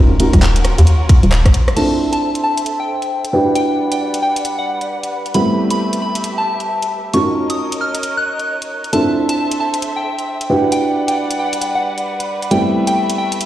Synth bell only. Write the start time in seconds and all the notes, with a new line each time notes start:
1.77 A5
2.13 A5
2.44 A5
2.80 G5
3.55 G5
3.92 G5
4.23 G5
4.59 F#5
5.35 B5
5.71 B5
6.02 B5
6.38 A5
7.14 C#6
7.50 D#6
7.81 F6
8.17 F#6
8.93 A5
9.29 A5
9.60 A5
9.96 G5
10.72 G5
11.08 G5
11.39 G5
11.75 F#5
12.51 G5
12.87 G5
13.18 G5